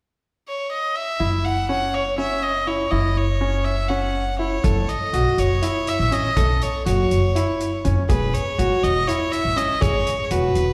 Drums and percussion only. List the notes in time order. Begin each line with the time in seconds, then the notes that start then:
4.64 kick, closed hi-hat
4.89 closed hi-hat
5.14 closed hi-hat
5.38 closed hi-hat
5.62 closed hi-hat
5.87 closed hi-hat
6.12 closed hi-hat
6.37 kick, closed hi-hat
6.61 closed hi-hat
6.86 closed hi-hat
7.11 closed hi-hat
7.36 closed hi-hat
7.60 closed hi-hat
7.85 closed hi-hat
8.09 kick, closed hi-hat
8.34 closed hi-hat
8.59 closed hi-hat
8.84 closed hi-hat
9.09 closed hi-hat
9.33 closed hi-hat
9.57 closed hi-hat
9.82 kick, closed hi-hat
10.07 closed hi-hat
10.31 closed hi-hat
10.55 closed hi-hat